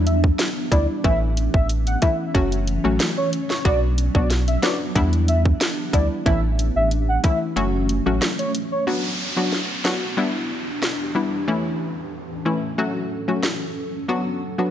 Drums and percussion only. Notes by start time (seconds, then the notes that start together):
0.07 closed hi-hat
0.24 kick
0.39 snare, closed hi-hat
0.72 kick, closed hi-hat
1.04 kick, closed hi-hat
1.37 closed hi-hat
1.54 kick
1.69 closed hi-hat
1.87 closed hi-hat
2.02 kick, closed hi-hat
2.35 kick, closed hi-hat
2.52 closed hi-hat
2.67 closed hi-hat
3.00 snare, closed hi-hat
3.33 closed hi-hat
3.50 snare
3.65 kick, closed hi-hat
3.98 closed hi-hat
4.15 kick
4.30 snare, closed hi-hat
4.48 closed hi-hat
4.63 snare, closed hi-hat
4.96 kick, closed hi-hat
5.13 closed hi-hat
5.28 closed hi-hat
5.45 kick
5.61 snare, closed hi-hat
5.93 kick, closed hi-hat
6.26 kick, closed hi-hat
6.59 closed hi-hat
6.91 closed hi-hat
7.24 kick, closed hi-hat
7.57 closed hi-hat
7.89 closed hi-hat
8.22 cross-stick, snare, closed hi-hat
8.39 closed hi-hat
8.55 closed hi-hat
9.52 snare
9.85 snare
10.83 cross-stick, snare
13.43 cross-stick, snare